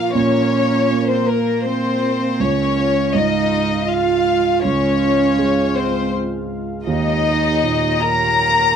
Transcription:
Already playing: grand piano A#2 F3, analog synth pad A#3 F4 A#4, cello F4, violin section F5
0.15 grand piano A#2, cello C#4, violin section C#5
0.90 grand piano A#3
1.11 cello C4, violin section C5
1.28 cello A#3, violin section A#4
1.65 cello C4, violin section C5
2.40 grand piano C#2, analog synth pad G#3 F4 F5, cello C#4, violin section C#5
3.14 grand piano G#2, cello D#4, violin section D#5
3.89 cello F4, violin section F5
4.64 grand piano C#2, cello C#4, violin section C#5
5.39 grand piano G#3
5.75 cello C4, violin section C5
6.86 grand piano D#2, analog synth pad A#3 G4 C#5, cello D#4, violin section D#5
7.63 grand piano A#2
8.01 cello A#4, violin section A#5

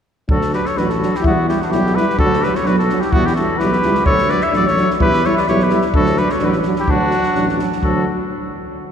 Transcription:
0.28 tuba D2, euphonium F#3, french horn D4, clarinet F#4, trumpet A4, kick
0.41 snare
0.51 euphonium F#3, french horn D4, clarinet G4, trumpet B4, snare
0.65 clarinet A4, trumpet C#5, snare
0.76 tuba A1, euphonium F#3, french horn D4, clarinet F#4, trumpet B4, snare
0.90 clarinet F#4, trumpet A4, snare
1.00 euphonium F#3, french horn D4, snare
1.15 clarinet E4, trumpet G4, snare
1.22 tuba E2, clarinet B3, french horn E4, kick
1.27 euphonium G3, trumpet F#4
1.45 french horn E4, clarinet E4, trumpet G4, snare
1.52 euphonium G3
1.61 clarinet D4, trumpet F#4, snare
1.70 tuba B1, euphonium G3, french horn E4, clarinet E4, trumpet G4, snare
1.86 snare
1.95 euphonium G3, french horn E4, clarinet G4, trumpet B4, snare
2.10 snare
2.17 tuba D2, french horn D4, clarinet F#4, trumpet A4, kick
2.24 euphonium F#3
2.33 snare
2.40 french horn D4, clarinet G4, trumpet B4, snare
2.45 euphonium F#3
2.55 clarinet A4, trumpet C#5, snare
2.64 tuba B1, euphonium F#3, french horn D4, clarinet F#4, trumpet B4, snare
2.78 clarinet F#4, trumpet A4, snare
2.88 euphonium F#3, french horn D4, snare
3.00 clarinet E4, trumpet G4, snare
3.11 tuba E2, clarinet B3, french horn E4, trumpet F#4, kick
3.15 euphonium G3
3.26 clarinet E4, trumpet G4, snare
3.35 euphonium G3, french horn E4, clarinet F#4, trumpet A4, snare
3.57 tuba B1, french horn E4, clarinet G4, trumpet B4, snare
3.61 euphonium G3
3.72 snare
3.81 tuba C#2, french horn E4, snare
3.86 euphonium G3
3.95 snare
4.05 tuba D2, french horn D4, clarinet A4, trumpet C#5, kick
4.09 euphonium F#3
4.18 snare
4.29 euphonium F#3, french horn D4, clarinet B4, trumpet D5, snare
4.41 clarinet C#5, trumpet E5, snare
4.52 tuba A1, euphonium F#3, french horn D4, clarinet A4, snare
4.56 trumpet D5
4.66 clarinet A4, trumpet C#5, snare
4.77 euphonium F#3, french horn D4, snare
4.90 snare
4.99 tuba E2, euphonium G3, french horn E4, clarinet G4, trumpet B4, kick
5.13 snare
5.24 euphonium G3, french horn E4, clarinet A4, trumpet C#5, snare
5.34 clarinet C#5, trumpet D5 E5, snare
5.38 clarinet B4
5.47 tuba B1, euphonium G3, french horn E4, clarinet G4, trumpet C#5, snare
5.60 clarinet G4, trumpet B4, snare
5.70 euphonium G3, french horn E4, snare
5.81 snare
5.94 tuba D2, euphonium F#3, french horn D4, clarinet F#4, trumpet A4, kick
6.06 snare
6.17 euphonium F#3, french horn D4, clarinet G4, trumpet B4, snare
6.29 clarinet A4, trumpet C#5, snare
6.39 tuba A1, euphonium F#3, french horn D4, clarinet F#4, snare
6.44 clarinet G4 A4, trumpet B4 C#5
6.50 trumpet B4, snare
6.62 euphonium F#3, snare
6.67 french horn D4
6.76 clarinet E4, trumpet G4, snare
6.88 tuba D2, euphonium F#3, clarinet D4, french horn D4, trumpet F#4, kick
7.11 euphonium F#3, french horn D4, snare
7.23 snare
7.35 tuba A1, euphonium F#3, french horn D4, snare
7.49 snare
7.58 euphonium F#3, french horn D4, snare
7.72 snare
7.82 tuba D2, euphonium F#3, french horn D4, clarinet F#4, trumpet A4, kick

